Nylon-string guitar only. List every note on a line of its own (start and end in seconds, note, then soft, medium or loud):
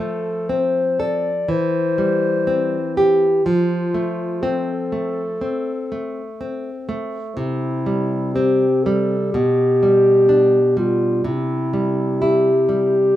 0.00 1.47 F3 soft
0.00 0.80 A3 soft
0.49 1.30 C4 soft
1.00 1.50 A4 soft
1.48 3.41 E3 soft
1.98 2.77 G3 soft
2.47 3.26 C4 soft
2.97 3.46 G4 soft
3.46 5.37 F3 soft
3.94 4.72 A3 soft
4.43 5.21 C4 soft
4.92 5.71 A3 soft
5.41 6.21 C4 soft
5.92 6.70 A3 soft
6.41 7.18 C4 soft
6.89 7.37 A3 soft
7.37 9.31 C3 medium
7.86 8.66 G3 soft
8.36 9.15 C4 soft
8.86 9.35 G3 soft
9.34 11.22 B2 medium
9.83 10.59 G3 soft
10.29 11.06 D4 soft
10.77 11.26 G3 soft
11.24 13.12 C3 medium
11.73 12.50 G3 soft
12.22 12.98 E4 soft
12.69 13.16 G3 soft